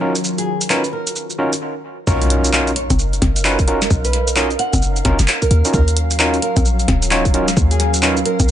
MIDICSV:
0, 0, Header, 1, 8, 480
1, 0, Start_track
1, 0, Tempo, 458015
1, 253, Time_signature, 4, 2, 24, 8
1, 8918, End_track
2, 0, Start_track
2, 0, Title_t, "Nylon-string guitar"
2, 0, Program_c, 0, 24
2, 402, Note_on_c, 0, 68, 90
2, 629, Note_off_c, 0, 68, 0
2, 733, Note_on_c, 0, 71, 85
2, 906, Note_off_c, 0, 71, 0
2, 972, Note_on_c, 0, 70, 94
2, 1294, Note_off_c, 0, 70, 0
2, 2172, Note_on_c, 0, 73, 99
2, 2404, Note_off_c, 0, 73, 0
2, 2893, Note_on_c, 0, 73, 96
2, 3125, Note_off_c, 0, 73, 0
2, 4240, Note_on_c, 0, 71, 91
2, 4468, Note_off_c, 0, 71, 0
2, 4573, Note_on_c, 0, 75, 96
2, 4746, Note_off_c, 0, 75, 0
2, 4813, Note_on_c, 0, 78, 97
2, 5135, Note_off_c, 0, 78, 0
2, 5681, Note_on_c, 0, 70, 94
2, 5909, Note_off_c, 0, 70, 0
2, 6013, Note_on_c, 0, 70, 100
2, 6245, Note_off_c, 0, 70, 0
2, 6731, Note_on_c, 0, 70, 100
2, 6964, Note_off_c, 0, 70, 0
2, 8081, Note_on_c, 0, 68, 98
2, 8308, Note_off_c, 0, 68, 0
2, 8410, Note_on_c, 0, 71, 89
2, 8585, Note_off_c, 0, 71, 0
2, 8651, Note_on_c, 0, 70, 93
2, 8918, Note_off_c, 0, 70, 0
2, 8918, End_track
3, 0, Start_track
3, 0, Title_t, "Ambient pad"
3, 0, Program_c, 1, 92
3, 0, Note_on_c, 1, 54, 78
3, 0, Note_on_c, 1, 63, 83
3, 0, Note_on_c, 1, 73, 86
3, 0, Note_on_c, 1, 77, 88
3, 1691, Note_off_c, 1, 77, 0
3, 1692, Note_off_c, 1, 54, 0
3, 1692, Note_off_c, 1, 73, 0
3, 1693, Note_off_c, 1, 63, 0
3, 2352, Note_on_c, 1, 70, 90
3, 2632, Note_on_c, 1, 77, 79
3, 5773, Note_on_c, 1, 61, 83
3, 5830, Note_on_c, 1, 54, 78
3, 6919, Note_off_c, 1, 70, 0
3, 8918, Note_off_c, 1, 54, 0
3, 8918, Note_off_c, 1, 61, 0
3, 8918, Note_off_c, 1, 77, 0
3, 8918, End_track
4, 0, Start_track
4, 0, Title_t, "String machine"
4, 0, Program_c, 2, 50
4, 0, Note_on_c, 2, 51, 75
4, 0, Note_on_c, 2, 61, 71
4, 0, Note_on_c, 2, 65, 72
4, 0, Note_on_c, 2, 66, 71
4, 0, Note_on_c, 2, 70, 86
4, 1650, Note_off_c, 2, 70, 0
4, 1656, Note_off_c, 2, 61, 0
4, 1657, Note_off_c, 2, 51, 0
4, 1657, Note_off_c, 2, 65, 0
4, 1657, Note_off_c, 2, 66, 0
4, 2173, Note_on_c, 2, 61, 81
4, 2173, Note_on_c, 2, 70, 91
4, 2173, Note_on_c, 2, 77, 72
4, 2174, Note_on_c, 2, 63, 76
4, 5737, Note_off_c, 2, 63, 0
4, 5737, Note_off_c, 2, 70, 0
4, 5773, Note_on_c, 2, 66, 72
4, 5773, Note_on_c, 2, 70, 92
4, 8918, Note_off_c, 2, 61, 0
4, 8918, Note_off_c, 2, 66, 0
4, 8918, Note_off_c, 2, 70, 0
4, 8918, Note_off_c, 2, 77, 0
4, 8918, End_track
5, 0, Start_track
5, 0, Title_t, "Tine electric piano"
5, 0, Program_c, 3, 4
5, 11, Note_on_c, 3, 63, 80
5, 11, Note_on_c, 3, 65, 78
5, 11, Note_on_c, 3, 70, 99
5, 12, Note_on_c, 3, 61, 88
5, 12, Note_on_c, 3, 66, 78
5, 139, Note_off_c, 3, 61, 0
5, 139, Note_off_c, 3, 63, 0
5, 139, Note_off_c, 3, 65, 0
5, 139, Note_off_c, 3, 66, 0
5, 139, Note_off_c, 3, 70, 0
5, 731, Note_on_c, 3, 61, 93
5, 731, Note_on_c, 3, 65, 79
5, 732, Note_on_c, 3, 63, 83
5, 732, Note_on_c, 3, 66, 84
5, 732, Note_on_c, 3, 70, 99
5, 859, Note_off_c, 3, 61, 0
5, 859, Note_off_c, 3, 63, 0
5, 859, Note_off_c, 3, 65, 0
5, 859, Note_off_c, 3, 66, 0
5, 859, Note_off_c, 3, 70, 0
5, 1452, Note_on_c, 3, 61, 92
5, 1452, Note_on_c, 3, 63, 83
5, 1452, Note_on_c, 3, 65, 86
5, 1452, Note_on_c, 3, 66, 87
5, 1452, Note_on_c, 3, 70, 102
5, 1579, Note_off_c, 3, 61, 0
5, 1579, Note_off_c, 3, 63, 0
5, 1579, Note_off_c, 3, 65, 0
5, 1579, Note_off_c, 3, 66, 0
5, 1579, Note_off_c, 3, 70, 0
5, 2172, Note_on_c, 3, 63, 98
5, 2172, Note_on_c, 3, 65, 100
5, 2172, Note_on_c, 3, 70, 121
5, 2173, Note_on_c, 3, 61, 106
5, 2173, Note_on_c, 3, 66, 95
5, 2616, Note_off_c, 3, 61, 0
5, 2616, Note_off_c, 3, 63, 0
5, 2616, Note_off_c, 3, 65, 0
5, 2616, Note_off_c, 3, 66, 0
5, 2616, Note_off_c, 3, 70, 0
5, 2652, Note_on_c, 3, 61, 86
5, 2652, Note_on_c, 3, 63, 79
5, 2652, Note_on_c, 3, 65, 83
5, 2652, Note_on_c, 3, 66, 76
5, 2652, Note_on_c, 3, 70, 94
5, 2834, Note_off_c, 3, 61, 0
5, 2834, Note_off_c, 3, 63, 0
5, 2834, Note_off_c, 3, 65, 0
5, 2834, Note_off_c, 3, 66, 0
5, 2834, Note_off_c, 3, 70, 0
5, 3612, Note_on_c, 3, 61, 103
5, 3612, Note_on_c, 3, 65, 94
5, 3612, Note_on_c, 3, 66, 93
5, 3612, Note_on_c, 3, 71, 113
5, 3613, Note_on_c, 3, 63, 95
5, 3739, Note_off_c, 3, 61, 0
5, 3739, Note_off_c, 3, 63, 0
5, 3739, Note_off_c, 3, 65, 0
5, 3739, Note_off_c, 3, 66, 0
5, 3739, Note_off_c, 3, 71, 0
5, 3852, Note_on_c, 3, 61, 90
5, 3852, Note_on_c, 3, 63, 85
5, 3852, Note_on_c, 3, 66, 84
5, 3852, Note_on_c, 3, 70, 101
5, 3853, Note_on_c, 3, 65, 79
5, 3979, Note_off_c, 3, 61, 0
5, 3979, Note_off_c, 3, 63, 0
5, 3979, Note_off_c, 3, 65, 0
5, 3979, Note_off_c, 3, 66, 0
5, 3979, Note_off_c, 3, 70, 0
5, 4571, Note_on_c, 3, 63, 88
5, 4572, Note_on_c, 3, 61, 96
5, 4572, Note_on_c, 3, 65, 84
5, 4572, Note_on_c, 3, 66, 88
5, 4572, Note_on_c, 3, 70, 105
5, 4699, Note_off_c, 3, 61, 0
5, 4699, Note_off_c, 3, 63, 0
5, 4699, Note_off_c, 3, 65, 0
5, 4699, Note_off_c, 3, 66, 0
5, 4699, Note_off_c, 3, 70, 0
5, 5292, Note_on_c, 3, 61, 98
5, 5292, Note_on_c, 3, 63, 89
5, 5292, Note_on_c, 3, 65, 88
5, 5292, Note_on_c, 3, 66, 87
5, 5292, Note_on_c, 3, 70, 111
5, 5419, Note_off_c, 3, 61, 0
5, 5419, Note_off_c, 3, 63, 0
5, 5419, Note_off_c, 3, 65, 0
5, 5419, Note_off_c, 3, 66, 0
5, 5419, Note_off_c, 3, 70, 0
5, 5921, Note_on_c, 3, 61, 81
5, 5921, Note_on_c, 3, 63, 72
5, 5921, Note_on_c, 3, 65, 73
5, 5921, Note_on_c, 3, 66, 73
5, 5921, Note_on_c, 3, 70, 83
5, 6067, Note_off_c, 3, 61, 0
5, 6067, Note_off_c, 3, 63, 0
5, 6067, Note_off_c, 3, 65, 0
5, 6067, Note_off_c, 3, 66, 0
5, 6067, Note_off_c, 3, 70, 0
5, 6492, Note_on_c, 3, 61, 82
5, 6492, Note_on_c, 3, 63, 81
5, 6492, Note_on_c, 3, 65, 81
5, 6492, Note_on_c, 3, 66, 80
5, 6492, Note_on_c, 3, 70, 95
5, 6674, Note_off_c, 3, 61, 0
5, 6674, Note_off_c, 3, 63, 0
5, 6674, Note_off_c, 3, 65, 0
5, 6674, Note_off_c, 3, 66, 0
5, 6674, Note_off_c, 3, 70, 0
5, 7451, Note_on_c, 3, 61, 102
5, 7451, Note_on_c, 3, 63, 100
5, 7451, Note_on_c, 3, 66, 93
5, 7451, Note_on_c, 3, 73, 115
5, 7452, Note_on_c, 3, 65, 100
5, 7579, Note_off_c, 3, 61, 0
5, 7579, Note_off_c, 3, 63, 0
5, 7579, Note_off_c, 3, 65, 0
5, 7579, Note_off_c, 3, 66, 0
5, 7579, Note_off_c, 3, 73, 0
5, 7691, Note_on_c, 3, 61, 93
5, 7692, Note_on_c, 3, 63, 82
5, 7692, Note_on_c, 3, 65, 79
5, 7692, Note_on_c, 3, 66, 81
5, 7692, Note_on_c, 3, 70, 100
5, 7819, Note_off_c, 3, 61, 0
5, 7819, Note_off_c, 3, 63, 0
5, 7819, Note_off_c, 3, 65, 0
5, 7819, Note_off_c, 3, 66, 0
5, 7819, Note_off_c, 3, 70, 0
5, 8411, Note_on_c, 3, 61, 98
5, 8411, Note_on_c, 3, 63, 89
5, 8411, Note_on_c, 3, 70, 112
5, 8412, Note_on_c, 3, 65, 88
5, 8412, Note_on_c, 3, 66, 85
5, 8539, Note_off_c, 3, 61, 0
5, 8539, Note_off_c, 3, 63, 0
5, 8539, Note_off_c, 3, 65, 0
5, 8539, Note_off_c, 3, 66, 0
5, 8539, Note_off_c, 3, 70, 0
5, 8918, End_track
6, 0, Start_track
6, 0, Title_t, "808-style bass"
6, 0, Program_c, 4, 38
6, 2172, Note_on_c, 4, 35, 93
6, 2868, Note_off_c, 4, 35, 0
6, 3042, Note_on_c, 4, 30, 104
6, 3349, Note_off_c, 4, 30, 0
6, 3372, Note_on_c, 4, 30, 91
6, 4068, Note_off_c, 4, 30, 0
6, 4092, Note_on_c, 4, 35, 99
6, 4788, Note_off_c, 4, 35, 0
6, 4960, Note_on_c, 4, 30, 106
6, 5268, Note_off_c, 4, 30, 0
6, 5292, Note_on_c, 4, 30, 80
6, 5416, Note_off_c, 4, 30, 0
6, 5441, Note_on_c, 4, 30, 102
6, 5517, Note_off_c, 4, 30, 0
6, 5772, Note_on_c, 4, 39, 98
6, 5896, Note_off_c, 4, 39, 0
6, 6012, Note_on_c, 4, 39, 97
6, 6708, Note_off_c, 4, 39, 0
6, 6880, Note_on_c, 4, 34, 106
6, 7188, Note_off_c, 4, 34, 0
6, 7211, Note_on_c, 4, 27, 92
6, 7908, Note_off_c, 4, 27, 0
6, 7931, Note_on_c, 4, 39, 100
6, 8628, Note_off_c, 4, 39, 0
6, 8800, Note_on_c, 4, 34, 101
6, 8918, Note_off_c, 4, 34, 0
6, 8918, End_track
7, 0, Start_track
7, 0, Title_t, "Impact"
7, 0, Program_c, 5, 103
7, 2173, Note_on_c, 5, 60, 75
7, 4092, Note_off_c, 5, 60, 0
7, 8918, End_track
8, 0, Start_track
8, 0, Title_t, "Drums"
8, 162, Note_on_c, 9, 42, 65
8, 162, Note_on_c, 9, 82, 63
8, 254, Note_off_c, 9, 82, 0
8, 254, Note_on_c, 9, 82, 50
8, 267, Note_off_c, 9, 42, 0
8, 358, Note_off_c, 9, 82, 0
8, 402, Note_on_c, 9, 42, 54
8, 402, Note_on_c, 9, 82, 29
8, 507, Note_off_c, 9, 42, 0
8, 507, Note_off_c, 9, 82, 0
8, 642, Note_on_c, 9, 42, 66
8, 642, Note_on_c, 9, 82, 61
8, 733, Note_off_c, 9, 82, 0
8, 733, Note_on_c, 9, 39, 106
8, 733, Note_on_c, 9, 82, 46
8, 747, Note_off_c, 9, 42, 0
8, 838, Note_off_c, 9, 39, 0
8, 838, Note_off_c, 9, 82, 0
8, 882, Note_on_c, 9, 42, 36
8, 882, Note_on_c, 9, 82, 29
8, 987, Note_off_c, 9, 42, 0
8, 987, Note_off_c, 9, 82, 0
8, 1122, Note_on_c, 9, 42, 61
8, 1122, Note_on_c, 9, 82, 60
8, 1213, Note_off_c, 9, 82, 0
8, 1213, Note_on_c, 9, 82, 49
8, 1227, Note_off_c, 9, 42, 0
8, 1318, Note_off_c, 9, 82, 0
8, 1362, Note_on_c, 9, 82, 31
8, 1467, Note_off_c, 9, 82, 0
8, 1602, Note_on_c, 9, 42, 66
8, 1602, Note_on_c, 9, 82, 60
8, 1707, Note_off_c, 9, 42, 0
8, 1707, Note_off_c, 9, 82, 0
8, 2173, Note_on_c, 9, 36, 124
8, 2173, Note_on_c, 9, 82, 49
8, 2277, Note_off_c, 9, 36, 0
8, 2278, Note_off_c, 9, 82, 0
8, 2322, Note_on_c, 9, 42, 53
8, 2322, Note_on_c, 9, 82, 31
8, 2413, Note_off_c, 9, 42, 0
8, 2413, Note_on_c, 9, 42, 114
8, 2427, Note_off_c, 9, 82, 0
8, 2518, Note_off_c, 9, 42, 0
8, 2562, Note_on_c, 9, 42, 66
8, 2562, Note_on_c, 9, 82, 59
8, 2654, Note_off_c, 9, 82, 0
8, 2654, Note_on_c, 9, 39, 118
8, 2654, Note_on_c, 9, 82, 50
8, 2667, Note_off_c, 9, 42, 0
8, 2759, Note_off_c, 9, 39, 0
8, 2759, Note_off_c, 9, 82, 0
8, 2802, Note_on_c, 9, 42, 37
8, 2802, Note_on_c, 9, 82, 31
8, 2893, Note_off_c, 9, 42, 0
8, 2893, Note_on_c, 9, 42, 100
8, 2907, Note_off_c, 9, 82, 0
8, 2998, Note_off_c, 9, 42, 0
8, 3041, Note_on_c, 9, 36, 61
8, 3042, Note_on_c, 9, 42, 66
8, 3042, Note_on_c, 9, 63, 75
8, 3042, Note_on_c, 9, 82, 61
8, 3134, Note_off_c, 9, 82, 0
8, 3134, Note_on_c, 9, 82, 51
8, 3146, Note_off_c, 9, 36, 0
8, 3147, Note_off_c, 9, 42, 0
8, 3147, Note_off_c, 9, 63, 0
8, 3238, Note_off_c, 9, 82, 0
8, 3283, Note_on_c, 9, 42, 40
8, 3283, Note_on_c, 9, 82, 31
8, 3372, Note_on_c, 9, 36, 110
8, 3374, Note_off_c, 9, 42, 0
8, 3374, Note_on_c, 9, 38, 67
8, 3374, Note_on_c, 9, 42, 113
8, 3374, Note_on_c, 9, 63, 78
8, 3387, Note_off_c, 9, 82, 0
8, 3477, Note_off_c, 9, 36, 0
8, 3479, Note_off_c, 9, 38, 0
8, 3479, Note_off_c, 9, 42, 0
8, 3479, Note_off_c, 9, 63, 0
8, 3523, Note_on_c, 9, 42, 71
8, 3523, Note_on_c, 9, 82, 62
8, 3613, Note_off_c, 9, 82, 0
8, 3613, Note_on_c, 9, 39, 126
8, 3613, Note_on_c, 9, 82, 50
8, 3627, Note_off_c, 9, 42, 0
8, 3718, Note_off_c, 9, 39, 0
8, 3718, Note_off_c, 9, 82, 0
8, 3761, Note_on_c, 9, 36, 103
8, 3761, Note_on_c, 9, 42, 54
8, 3761, Note_on_c, 9, 82, 31
8, 3853, Note_off_c, 9, 42, 0
8, 3853, Note_on_c, 9, 42, 91
8, 3866, Note_off_c, 9, 36, 0
8, 3866, Note_off_c, 9, 82, 0
8, 3957, Note_off_c, 9, 42, 0
8, 4001, Note_on_c, 9, 38, 73
8, 4001, Note_on_c, 9, 42, 65
8, 4001, Note_on_c, 9, 82, 62
8, 4092, Note_off_c, 9, 82, 0
8, 4092, Note_on_c, 9, 36, 122
8, 4092, Note_on_c, 9, 82, 50
8, 4106, Note_off_c, 9, 38, 0
8, 4106, Note_off_c, 9, 42, 0
8, 4197, Note_off_c, 9, 36, 0
8, 4197, Note_off_c, 9, 82, 0
8, 4241, Note_on_c, 9, 42, 52
8, 4241, Note_on_c, 9, 82, 31
8, 4332, Note_off_c, 9, 42, 0
8, 4332, Note_on_c, 9, 38, 34
8, 4332, Note_on_c, 9, 42, 107
8, 4346, Note_off_c, 9, 82, 0
8, 4437, Note_off_c, 9, 38, 0
8, 4437, Note_off_c, 9, 42, 0
8, 4481, Note_on_c, 9, 42, 60
8, 4481, Note_on_c, 9, 82, 61
8, 4572, Note_off_c, 9, 82, 0
8, 4572, Note_on_c, 9, 39, 120
8, 4572, Note_on_c, 9, 82, 51
8, 4586, Note_off_c, 9, 42, 0
8, 4677, Note_off_c, 9, 39, 0
8, 4677, Note_off_c, 9, 82, 0
8, 4721, Note_on_c, 9, 42, 35
8, 4721, Note_on_c, 9, 82, 30
8, 4812, Note_off_c, 9, 42, 0
8, 4812, Note_on_c, 9, 42, 95
8, 4826, Note_off_c, 9, 82, 0
8, 4917, Note_off_c, 9, 42, 0
8, 4961, Note_on_c, 9, 36, 66
8, 4961, Note_on_c, 9, 42, 60
8, 4961, Note_on_c, 9, 63, 81
8, 4961, Note_on_c, 9, 82, 60
8, 5052, Note_off_c, 9, 82, 0
8, 5052, Note_on_c, 9, 82, 51
8, 5065, Note_off_c, 9, 42, 0
8, 5065, Note_off_c, 9, 63, 0
8, 5066, Note_off_c, 9, 36, 0
8, 5157, Note_off_c, 9, 82, 0
8, 5200, Note_on_c, 9, 42, 39
8, 5200, Note_on_c, 9, 82, 31
8, 5291, Note_off_c, 9, 42, 0
8, 5291, Note_on_c, 9, 38, 73
8, 5291, Note_on_c, 9, 42, 106
8, 5291, Note_on_c, 9, 63, 79
8, 5292, Note_on_c, 9, 36, 116
8, 5305, Note_off_c, 9, 82, 0
8, 5396, Note_off_c, 9, 38, 0
8, 5396, Note_off_c, 9, 42, 0
8, 5396, Note_off_c, 9, 63, 0
8, 5397, Note_off_c, 9, 36, 0
8, 5440, Note_on_c, 9, 38, 73
8, 5440, Note_on_c, 9, 42, 67
8, 5440, Note_on_c, 9, 82, 61
8, 5531, Note_off_c, 9, 82, 0
8, 5531, Note_on_c, 9, 39, 127
8, 5531, Note_on_c, 9, 82, 53
8, 5545, Note_off_c, 9, 38, 0
8, 5545, Note_off_c, 9, 42, 0
8, 5636, Note_off_c, 9, 39, 0
8, 5636, Note_off_c, 9, 82, 0
8, 5681, Note_on_c, 9, 36, 58
8, 5681, Note_on_c, 9, 42, 53
8, 5681, Note_on_c, 9, 82, 29
8, 5772, Note_off_c, 9, 42, 0
8, 5772, Note_on_c, 9, 42, 91
8, 5785, Note_off_c, 9, 36, 0
8, 5786, Note_off_c, 9, 82, 0
8, 5877, Note_off_c, 9, 42, 0
8, 5920, Note_on_c, 9, 42, 66
8, 5920, Note_on_c, 9, 82, 61
8, 6011, Note_off_c, 9, 82, 0
8, 6011, Note_on_c, 9, 82, 52
8, 6012, Note_on_c, 9, 36, 122
8, 6025, Note_off_c, 9, 42, 0
8, 6116, Note_off_c, 9, 82, 0
8, 6117, Note_off_c, 9, 36, 0
8, 6160, Note_on_c, 9, 42, 53
8, 6160, Note_on_c, 9, 82, 32
8, 6252, Note_off_c, 9, 42, 0
8, 6252, Note_on_c, 9, 42, 104
8, 6265, Note_off_c, 9, 82, 0
8, 6357, Note_off_c, 9, 42, 0
8, 6401, Note_on_c, 9, 42, 64
8, 6401, Note_on_c, 9, 82, 65
8, 6492, Note_off_c, 9, 82, 0
8, 6492, Note_on_c, 9, 39, 125
8, 6492, Note_on_c, 9, 82, 52
8, 6506, Note_off_c, 9, 42, 0
8, 6597, Note_off_c, 9, 39, 0
8, 6597, Note_off_c, 9, 82, 0
8, 6641, Note_on_c, 9, 42, 35
8, 6641, Note_on_c, 9, 82, 31
8, 6732, Note_off_c, 9, 42, 0
8, 6732, Note_on_c, 9, 42, 92
8, 6746, Note_off_c, 9, 82, 0
8, 6837, Note_off_c, 9, 42, 0
8, 6880, Note_on_c, 9, 36, 64
8, 6881, Note_on_c, 9, 42, 64
8, 6881, Note_on_c, 9, 63, 81
8, 6881, Note_on_c, 9, 82, 61
8, 6972, Note_off_c, 9, 82, 0
8, 6972, Note_on_c, 9, 82, 53
8, 6985, Note_off_c, 9, 36, 0
8, 6986, Note_off_c, 9, 42, 0
8, 6986, Note_off_c, 9, 63, 0
8, 7077, Note_off_c, 9, 82, 0
8, 7121, Note_on_c, 9, 42, 39
8, 7121, Note_on_c, 9, 82, 32
8, 7211, Note_on_c, 9, 36, 116
8, 7212, Note_off_c, 9, 42, 0
8, 7212, Note_on_c, 9, 38, 69
8, 7212, Note_on_c, 9, 42, 106
8, 7212, Note_on_c, 9, 63, 86
8, 7226, Note_off_c, 9, 82, 0
8, 7316, Note_off_c, 9, 36, 0
8, 7317, Note_off_c, 9, 38, 0
8, 7317, Note_off_c, 9, 42, 0
8, 7317, Note_off_c, 9, 63, 0
8, 7361, Note_on_c, 9, 42, 66
8, 7361, Note_on_c, 9, 82, 66
8, 7452, Note_off_c, 9, 82, 0
8, 7452, Note_on_c, 9, 39, 123
8, 7452, Note_on_c, 9, 82, 55
8, 7466, Note_off_c, 9, 42, 0
8, 7557, Note_off_c, 9, 39, 0
8, 7557, Note_off_c, 9, 82, 0
8, 7600, Note_on_c, 9, 36, 109
8, 7601, Note_on_c, 9, 42, 50
8, 7601, Note_on_c, 9, 82, 30
8, 7692, Note_off_c, 9, 42, 0
8, 7692, Note_on_c, 9, 42, 88
8, 7705, Note_off_c, 9, 36, 0
8, 7706, Note_off_c, 9, 82, 0
8, 7797, Note_off_c, 9, 42, 0
8, 7841, Note_on_c, 9, 38, 70
8, 7841, Note_on_c, 9, 42, 62
8, 7841, Note_on_c, 9, 82, 63
8, 7931, Note_on_c, 9, 36, 123
8, 7932, Note_off_c, 9, 82, 0
8, 7932, Note_on_c, 9, 82, 55
8, 7946, Note_off_c, 9, 38, 0
8, 7946, Note_off_c, 9, 42, 0
8, 8036, Note_off_c, 9, 36, 0
8, 8037, Note_off_c, 9, 82, 0
8, 8081, Note_on_c, 9, 42, 53
8, 8081, Note_on_c, 9, 82, 33
8, 8172, Note_off_c, 9, 42, 0
8, 8172, Note_on_c, 9, 38, 31
8, 8172, Note_on_c, 9, 42, 102
8, 8185, Note_off_c, 9, 82, 0
8, 8277, Note_off_c, 9, 38, 0
8, 8277, Note_off_c, 9, 42, 0
8, 8320, Note_on_c, 9, 42, 64
8, 8320, Note_on_c, 9, 82, 67
8, 8411, Note_off_c, 9, 82, 0
8, 8411, Note_on_c, 9, 39, 115
8, 8411, Note_on_c, 9, 82, 53
8, 8425, Note_off_c, 9, 42, 0
8, 8516, Note_off_c, 9, 39, 0
8, 8516, Note_off_c, 9, 82, 0
8, 8560, Note_on_c, 9, 42, 36
8, 8560, Note_on_c, 9, 82, 32
8, 8651, Note_off_c, 9, 42, 0
8, 8651, Note_on_c, 9, 42, 85
8, 8665, Note_off_c, 9, 82, 0
8, 8756, Note_off_c, 9, 42, 0
8, 8800, Note_on_c, 9, 36, 65
8, 8800, Note_on_c, 9, 42, 67
8, 8800, Note_on_c, 9, 63, 84
8, 8800, Note_on_c, 9, 82, 65
8, 8905, Note_off_c, 9, 36, 0
8, 8905, Note_off_c, 9, 42, 0
8, 8905, Note_off_c, 9, 63, 0
8, 8905, Note_off_c, 9, 82, 0
8, 8918, End_track
0, 0, End_of_file